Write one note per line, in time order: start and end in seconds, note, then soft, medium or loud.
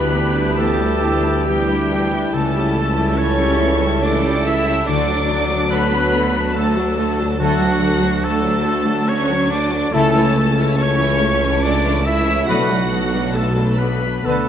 0.00 2.29 D2 medium
0.00 2.36 D3 medium
0.00 0.13 G3 medium
0.00 4.69 G3 medium
0.00 0.57 B3 medium
0.00 0.13 D4 medium
0.00 2.36 D4 medium
0.00 0.14 E4 medium
0.00 4.69 E4 medium
0.00 2.33 G4 medium
0.00 0.14 B4 medium
0.00 0.56 B4 loud
0.00 0.58 B4 medium
0.00 0.56 B5 loud
0.12 0.35 E3 medium
0.12 2.11 G3 medium
0.12 0.35 B3 medium
0.12 0.36 D4 medium
0.12 0.36 G4 medium
0.35 0.58 G3 medium
0.35 0.58 D4 medium
0.35 0.80 E4 medium
0.35 0.58 E4 medium
0.35 0.58 B4 medium
0.58 0.79 E3 medium
0.58 1.47 A3 medium
0.58 0.79 B3 medium
0.58 0.79 D4 medium
0.58 0.79 G4 medium
0.58 1.69 G4 medium
0.58 1.47 A4 loud
0.58 1.50 A4 medium
0.58 1.47 A5 loud
0.81 1.03 G3 medium
0.81 1.03 D4 medium
0.81 1.91 E4 medium
0.81 1.04 E4 medium
0.81 1.03 B4 medium
1.03 1.25 E3 medium
1.03 1.25 B3 medium
1.03 1.26 D4 medium
1.03 1.26 G4 medium
1.03 1.47 E5 medium
1.25 1.47 G3 medium
1.25 1.47 D4 medium
1.25 1.47 E4 medium
1.25 1.47 B4 medium
1.25 4.91 G5 medium
1.46 1.68 E3 medium
1.46 2.33 G3 medium
1.46 1.68 B3 medium
1.46 1.68 D4 medium
1.46 2.02 G4 medium
1.46 1.68 G4 medium
1.46 2.35 G4 medium
1.46 3.59 E5 medium
1.46 2.32 G5 loud
1.69 1.90 G3 medium
1.69 1.91 D4 medium
1.69 1.91 E4 medium
1.69 3.38 G4 medium
1.69 1.91 B4 medium
1.92 2.12 E3 medium
1.92 2.12 B3 medium
1.92 2.12 D4 medium
1.92 2.96 E4 medium
1.92 2.12 G4 medium
2.13 2.74 G3 medium
2.13 2.34 G3 medium
2.13 2.34 D4 medium
2.13 2.34 E4 medium
2.13 2.34 B4 medium
2.33 4.84 C#2 medium
2.33 4.71 C#2 medium
2.33 4.91 C#3 medium
2.33 2.54 E3 medium
2.33 3.16 A3 medium
2.33 2.54 A3 medium
2.33 2.54 C#4 medium
2.33 3.16 A4 medium
2.33 7.23 A4 medium
2.33 3.19 A4 medium
2.33 2.54 A4 medium
2.33 3.18 A5 loud
2.55 2.76 G3 medium
2.55 4.91 C#4 medium
2.55 2.76 C#4 medium
2.55 2.76 E4 medium
2.55 2.76 G4 medium
2.75 2.97 E3 medium
2.75 4.91 G3 medium
2.75 2.97 A3 medium
2.75 2.98 C#4 medium
2.75 2.98 A4 medium
2.97 3.18 G3 medium
2.97 3.18 C#4 medium
2.97 4.65 E4 medium
2.97 3.19 E4 medium
2.97 3.19 G4 medium
3.18 3.38 E3 medium
3.18 3.38 A3 medium
3.18 4.04 C#4 loud
3.18 3.39 C#4 medium
3.18 4.44 A4 medium
3.18 3.39 A4 medium
3.18 3.77 C#5 loud
3.18 4.04 C#5 loud
3.18 4.04 C#6 loud
3.39 3.61 G3 medium
3.39 3.61 C#4 medium
3.39 3.62 E4 medium
3.39 4.23 G4 medium
3.39 3.62 G4 medium
3.60 3.82 E3 medium
3.60 3.82 A3 medium
3.60 3.83 C#4 medium
3.60 3.83 A4 medium
3.60 4.02 E5 medium
3.81 4.04 G3 medium
3.81 4.04 C#4 medium
3.81 6.32 A5 medium
3.85 4.05 E4 medium
3.85 4.05 G4 medium
4.03 4.23 E3 medium
4.03 4.23 A3 medium
4.03 4.24 C#4 medium
4.03 4.46 D4 medium
4.03 4.24 A4 medium
4.03 4.45 D5 medium
4.03 4.43 D5 medium
4.03 4.91 E5 medium
4.03 4.46 D6 loud
4.24 4.46 G3 medium
4.24 4.46 C#4 medium
4.24 4.46 E4 medium
4.24 4.91 G4 medium
4.24 4.46 G4 medium
4.45 4.67 E3 medium
4.45 4.67 A3 medium
4.45 4.67 C#4 medium
4.45 4.87 E4 loud
4.45 5.69 A4 medium
4.45 4.67 A4 medium
4.45 4.88 E5 loud
4.45 4.86 E5 loud
4.45 4.88 E6 loud
4.66 4.88 G3 medium
4.66 4.88 C#4 medium
4.66 4.91 E4 medium
4.66 4.89 E4 medium
4.66 4.89 G4 medium
4.86 9.90 D2 medium
4.86 9.90 D2 loud
4.86 5.07 D3 medium
4.86 7.38 D3 medium
4.86 7.39 F#3 medium
4.86 5.07 A3 medium
4.86 5.71 D4 medium
4.86 7.35 F#4 medium
4.86 5.08 A4 medium
4.86 5.69 D5 loud
4.86 5.70 D5 loud
4.86 5.70 D6 loud
4.90 5.08 F#4 medium
5.09 5.30 F#3 medium
5.09 7.59 D4 medium
5.09 5.31 D4 medium
5.09 5.31 F#4 medium
5.29 5.51 D3 medium
5.29 9.19 F#3 medium
5.29 5.51 A3 medium
5.29 5.51 F#4 medium
5.29 5.52 A4 medium
5.50 5.71 F#3 medium
5.50 5.72 D4 medium
5.50 5.89 F#4 medium
5.50 5.72 F#4 medium
5.70 5.90 D3 medium
5.70 5.90 A3 medium
5.70 6.53 B3 loud
5.70 5.91 F#4 medium
5.70 6.96 A4 medium
5.70 5.91 A4 medium
5.70 6.59 B4 loud
5.70 6.55 B4 loud
5.70 6.55 B5 loud
5.90 6.13 F#3 medium
5.90 6.14 D4 medium
5.90 6.75 F#4 medium
5.90 6.13 F#4 medium
6.11 6.34 D3 medium
6.11 6.34 A3 medium
6.11 6.33 F#4 medium
6.11 6.35 A4 medium
6.11 6.54 F#5 medium
6.33 6.55 F#3 medium
6.33 6.56 D4 medium
6.33 6.54 F#4 medium
6.33 8.87 A5 medium
6.55 6.75 D3 medium
6.55 6.75 A3 medium
6.55 7.40 A3 medium
6.55 6.75 F#4 medium
6.55 6.75 A4 medium
6.55 7.08 A4 medium
6.55 7.39 A4 medium
6.55 8.65 F#5 medium
6.55 7.40 A5 loud
6.76 6.97 F#3 medium
6.76 6.99 D4 medium
6.76 7.17 F#4 medium
6.76 6.99 F#4 medium
6.96 7.18 D3 medium
6.96 7.18 A3 medium
6.96 8.22 A4 medium
7.00 7.20 F#4 medium
7.00 7.20 A4 medium
7.18 7.40 F#3 medium
7.18 7.41 D4 medium
7.18 8.01 F#4 medium
7.18 7.40 F#4 medium
7.38 7.59 D3 medium
7.38 9.97 D3 medium
7.38 8.22 F#3 medium
7.38 7.70 A3 loud
7.38 7.59 A3 medium
7.38 8.21 F#4 loud
7.38 7.70 F#4 medium
7.38 8.25 F#4 loud
7.38 7.60 F#4 medium
7.38 7.71 A4 medium
7.38 7.60 A4 medium
7.38 8.23 F#5 loud
7.59 7.81 F#3 medium
7.59 9.97 D4 medium
7.59 7.83 D4 medium
7.63 7.81 F#4 medium
7.81 8.02 D3 medium
7.81 8.02 A3 medium
7.81 9.71 A3 medium
7.81 8.01 F#4 medium
7.81 8.03 A4 medium
8.01 8.23 F#3 medium
8.01 8.24 D4 medium
8.01 8.44 F#4 medium
8.01 8.24 F#4 medium
8.22 8.42 D3 medium
8.22 8.42 A3 medium
8.22 9.09 A3 medium
8.22 8.44 F#4 medium
8.22 9.09 A4 loud
8.22 9.29 A4 medium
8.22 9.10 A4 loud
8.22 8.44 A4 medium
8.22 9.07 A5 loud
8.42 8.65 F#3 medium
8.42 9.50 F#4 medium
8.46 8.67 D4 medium
8.46 8.67 F#4 medium
8.64 8.87 D3 medium
8.64 8.87 A3 medium
8.64 8.87 F#4 medium
8.64 8.88 A4 medium
8.64 9.08 F#5 medium
8.87 9.09 F#3 medium
8.87 9.09 D4 medium
8.87 9.08 F#4 medium
8.87 11.44 A5 medium
9.08 9.29 D3 medium
9.08 9.29 A3 medium
9.08 9.51 C#4 loud
9.08 9.29 F#4 medium
9.08 9.29 A4 medium
9.08 9.51 C#5 loud
9.08 9.52 C#5 loud
9.08 9.97 F#5 medium
9.08 9.51 C#6 loud
9.29 9.51 F#3 medium
9.29 9.51 D4 medium
9.29 9.50 F#4 medium
9.29 10.80 A4 medium
9.50 9.72 D3 medium
9.50 9.72 A3 medium
9.50 9.94 D4 loud
9.50 9.97 F#4 medium
9.50 9.71 F#4 medium
9.50 9.73 A4 medium
9.50 9.94 D5 medium
9.50 9.93 D5 medium
9.50 9.94 D6 loud
9.70 9.92 F#3 medium
9.70 10.36 A3 medium
9.70 9.94 D4 medium
9.70 9.94 F#4 medium
9.91 12.44 C#2 loud
9.91 12.51 C#2 loud
9.91 12.52 C#3 medium
9.91 10.12 A3 medium
9.91 10.26 A3 medium
9.91 10.78 A3 medium
9.91 10.26 E4 loud
9.91 10.52 A4 loud
9.91 10.77 A4 loud
9.91 10.26 A4 medium
9.91 10.14 A4 medium
9.91 10.79 A5 loud
9.95 10.14 C#4 medium
10.13 10.36 E3 medium
10.13 10.35 C#4 medium
10.13 12.53 C#4 medium
10.13 10.37 E4 medium
10.13 10.37 C#5 medium
10.34 10.57 A3 medium
10.34 12.27 A3 medium
10.34 10.58 A4 medium
10.38 10.59 C#4 medium
10.55 10.78 E3 medium
10.55 10.78 C#4 medium
10.55 11.01 E4 medium
10.55 10.80 E4 medium
10.59 10.80 C#5 medium
10.77 10.98 A3 medium
10.77 11.64 C#4 loud
10.77 10.99 C#4 medium
10.77 10.99 A4 medium
10.77 11.84 A4 medium
10.77 11.64 C#5 loud
10.77 11.64 C#6 loud
10.81 11.65 C#5 loud
10.98 11.20 E3 medium
10.98 11.21 C#4 medium
10.98 11.22 E4 medium
10.98 11.22 C#5 medium
11.02 12.06 E4 medium
11.20 11.42 A3 medium
11.20 11.43 C#4 medium
11.20 11.43 A4 medium
11.20 11.64 E5 medium
11.41 11.63 E3 medium
11.41 11.63 C#4 medium
11.41 11.64 E4 medium
11.41 11.64 C#5 medium
11.41 14.30 A5 medium
11.63 11.83 A3 medium
11.63 11.84 C#4 medium
11.63 12.06 D4 loud
11.63 11.84 A4 medium
11.63 12.07 D5 medium
11.63 12.07 D5 loud
11.63 12.52 E5 medium
11.63 12.06 D6 loud
11.84 12.06 E3 medium
11.84 12.06 C#4 medium
11.84 12.06 E4 medium
11.84 13.57 A4 medium
11.84 12.06 C#5 medium
12.05 12.27 A3 medium
12.05 12.27 C#4 medium
12.05 12.48 E4 loud
12.05 12.53 E4 medium
12.05 12.27 A4 medium
12.05 12.47 E5 loud
12.05 12.49 E5 loud
12.05 12.49 E6 loud
12.25 12.48 E3 medium
12.25 12.91 A3 medium
12.25 12.47 C#4 medium
12.25 12.48 E4 medium
12.25 12.48 C#5 medium
12.46 14.25 B1 medium
12.46 14.08 B1 medium
12.46 14.30 B2 medium
12.46 13.36 F#3 medium
12.46 12.67 A3 medium
12.46 12.81 A3 medium
12.46 12.67 B3 medium
12.46 12.81 D4 medium
12.46 13.35 F#4 loud
12.46 13.38 F#4 medium
12.46 12.68 F#4 medium
12.46 12.68 A4 medium
12.46 12.81 B4 medium
12.46 13.33 F#5 loud
12.69 12.91 F#3 medium
12.69 14.49 F#3 medium
12.69 12.90 A3 medium
12.69 12.92 D4 medium
12.69 12.92 B4 medium
12.91 13.13 A3 medium
12.91 14.30 A3 medium
12.91 13.14 B3 medium
12.91 13.13 F#4 medium
12.91 13.14 A4 medium
13.14 13.36 F#3 medium
13.14 13.35 A3 medium
13.14 13.36 D4 medium
13.14 14.47 D4 medium
13.14 13.36 B4 medium
13.34 13.80 A3 medium
13.34 13.56 A3 medium
13.34 13.57 B3 medium
13.34 13.56 F#4 medium
13.34 13.79 A4 medium
13.34 13.56 A4 medium
13.34 13.80 A4 medium
13.34 14.49 B4 medium
13.34 13.80 A5 loud
13.57 13.80 F#3 medium
13.57 13.79 A3 medium
13.57 13.80 D4 medium
13.57 14.29 A4 medium
13.57 13.80 B4 medium
13.79 14.01 A3 medium
13.79 14.02 B3 medium
13.79 14.26 B3 medium
13.79 14.02 F#4 medium
13.79 14.02 A4 medium
13.79 14.27 B4 medium
13.79 14.24 B4 medium
13.79 14.49 D5 medium
13.79 14.25 B5 loud
14.02 14.25 F#3 medium
14.02 14.25 A3 medium
14.02 14.25 D4 medium
14.02 14.25 B4 medium
14.02 14.49 B5 medium
14.23 14.49 D2 medium
14.23 14.49 D3 medium
14.23 14.47 D3 medium
14.23 14.49 A3 medium
14.23 14.49 B3 medium
14.23 14.47 B3 medium
14.23 14.49 D4 medium
14.23 14.47 F#4 medium
14.23 14.49 A4 medium
14.23 14.49 B4 medium
14.23 14.49 A5 loud